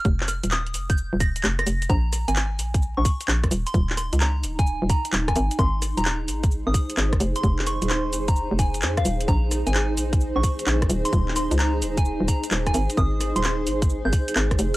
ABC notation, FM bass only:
X:1
M:4/4
L:1/16
Q:"Swing 16ths" 1/4=130
K:Abmix
V:1 name="FM bass" clef=bass
F,,,3 E,,,3 F,,,3 E,,,3 F,,,2 F,,,2 | B,,,3 A,,,3 B,,,3 B,,, z2 B,,,2 E,,, z | E,,,3 D,,3 E,,,3 E,,, z2 E,,,2 A,,, z | A,,,3 E,,,3 A,,,3 A,,, z2 A,,,2 F,,, z |
F,,,3 E,,,3 F,,,3 F,,,3 F,,2 E,,,2 | B,,,3 A,,,3 B,,,3 B,,, z2 B,,,2 E,,, z | E,,,3 D,,3 E,,,3 E,,, z2 E,,,2 A,,, z | A,,,3 E,,,3 A,,,3 A,,, z2 A,,,2 F,,, z |]